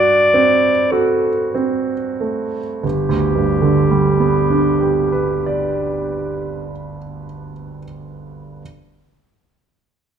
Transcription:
0.00 2.80 G2 soft
0.00 0.69 F#4 soft
0.00 0.93 D5 medium
0.34 1.29 C4 soft
0.92 1.93 F#4 soft
0.92 1.53 A4 soft
1.55 2.60 C4 soft
2.20 2.84 A3 soft
2.82 6.72 G1 soft
2.82 6.70 G4 soft
3.09 6.98 D2 soft
3.35 7.24 G2 soft
3.62 7.50 D3 soft
3.90 7.79 G3 soft
4.20 7.84 B3 soft
4.50 7.84 D4 soft
4.80 7.84 G4 soft
5.12 7.83 B4 soft
5.46 7.84 D5 soft

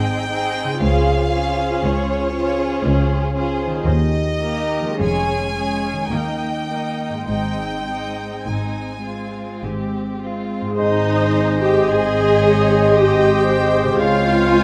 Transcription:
0.00 0.67 G#1 medium
0.00 0.67 G#2 medium
0.00 0.76 G#2 soft
0.00 0.28 C4 soft
0.00 0.67 C4 soft
0.00 0.28 D#4 soft
0.00 0.81 D#4 soft
0.00 0.28 G#4 soft
0.00 0.76 G#4 soft
0.00 0.28 D#5 soft
0.00 0.81 G5 medium
0.30 0.80 C4 soft
0.30 0.80 D#4 soft
0.30 0.80 G#4 medium
0.30 0.81 D#5 soft
0.64 3.80 C#3 medium
0.68 3.83 C4 soft
0.73 3.85 F4 soft
0.77 1.68 C#2 medium
0.77 1.31 C#4 soft
0.77 1.31 F4 soft
0.77 3.87 G#4 soft
0.77 1.31 C5 soft
0.81 1.69 C#2 medium
0.81 1.31 G#4 soft
0.81 1.81 F5 medium
1.32 2.31 C#4 medium
1.32 2.32 F4 soft
1.32 2.31 G#4 soft
1.32 2.31 C5 soft
1.82 2.69 C#2 medium
1.82 2.70 C#2 medium
1.82 3.34 C#5 medium
2.34 3.32 C#4 medium
2.34 3.32 F4 medium
2.34 3.33 G#4 medium
2.34 3.33 C5 medium
2.84 3.71 C#2 medium
3.34 3.84 C#4 soft
3.34 3.84 F4 soft
3.34 3.85 G#4 medium
3.34 3.85 C5 medium
3.66 4.95 D#3 medium
3.71 4.97 A#3 soft
3.75 4.99 D#4 soft
3.80 5.01 G4 soft
3.85 4.84 D#2 medium
3.85 4.95 D#5 medium
4.41 4.98 A#3 soft
4.41 4.98 D#4 soft
4.41 4.99 G4 soft
4.41 4.99 A#4 medium
4.80 6.05 F3 soft
4.84 6.08 G#3 soft
4.89 6.10 C#4 soft
4.94 6.12 F4 soft
4.99 5.96 F1 medium
4.99 5.95 F2 medium
4.99 5.54 G#3 soft
4.99 5.54 C#4 soft
4.99 5.54 G#4 soft
4.99 5.54 C#5 soft
4.99 6.11 G#5 medium
5.55 6.10 G#3 soft
5.55 6.10 C#4 soft
5.55 6.10 G#4 soft
5.55 6.09 C#5 soft
5.93 7.23 D#3 soft
5.97 7.25 A#3 soft
6.01 7.17 D#4 soft
6.06 7.30 A#4 soft
6.06 7.27 G5 medium
6.10 7.11 D#2 medium
6.10 7.12 D#2 soft
6.10 6.68 A#3 soft
6.10 6.67 D#4 soft
6.10 6.67 D#5 soft
6.68 7.27 A#3 soft
6.68 7.27 D#4 soft
6.68 7.26 D#5 soft
7.09 10.60 G#2 soft
7.14 10.64 G#3 soft
7.18 10.69 D#4 soft
7.23 10.73 C5 soft
7.27 8.29 G#1 soft
7.27 8.29 G#2 soft
7.27 7.86 G#3 soft
7.27 7.86 C4 soft
7.27 7.86 D#4 soft
7.27 7.86 D#5 soft
7.27 8.43 G5 medium
7.88 9.02 G#3 soft
7.88 9.02 C4 soft
7.88 8.33 D#4 soft
7.88 8.33 D#5 soft
8.45 9.47 G#1 soft
8.45 9.47 G#2 soft
8.45 9.00 D#4 soft
8.45 9.63 G#5 soft
9.04 10.20 G#3 soft
9.04 10.20 C4 soft
9.04 9.63 F4 soft
9.62 10.64 G#1 soft
9.62 10.64 G#2 soft
9.62 10.22 G4 soft
10.21 10.79 G#3 soft
10.21 10.78 C4 soft
10.21 10.79 F4 soft
10.61 13.96 G#2 medium
10.65 13.86 G#3 soft
10.70 14.00 D#4 soft
10.74 13.95 C5 soft
10.74 11.83 C5 medium
10.74 11.84 C5 medium
10.74 11.83 D#5 soft
10.79 13.96 G#1 soft
10.79 13.97 G#2 soft
10.79 11.84 G#3 soft
10.79 14.63 G#3 soft
10.79 14.63 C4 medium
10.79 11.57 D#4 medium
10.79 11.64 D#4 medium
10.79 11.84 D#5 soft
10.79 13.97 D#5 medium
10.79 11.58 D#5 medium
11.62 11.88 G4 medium
11.62 11.90 G4 medium
11.62 11.89 G5 medium
11.87 13.97 G#3 medium
11.87 12.96 G#4 medium
11.87 12.95 G#4 medium
11.87 12.41 C5 medium
11.87 13.97 C5 medium
11.87 12.92 D#5 medium
11.87 14.02 D#5 medium
11.87 12.94 G#5 medium
12.41 12.94 C#5 medium
12.93 14.01 G4 medium
12.93 13.46 D#5 medium
12.93 14.01 G5 medium
13.45 13.99 C5 medium
13.83 14.63 C#3 medium
13.87 14.63 G#3 medium
13.92 14.63 F4 medium
13.96 14.63 C#2 medium
13.96 14.63 C5 soft
13.96 14.63 C5 medium
13.96 14.63 C#5 medium
13.96 14.51 F5 medium
13.96 14.63 F5 medium
14.00 14.63 C#2 medium
14.00 14.63 G#3 medium
14.00 14.63 F4 medium
14.00 14.63 F5 medium
14.53 14.63 G#5 medium

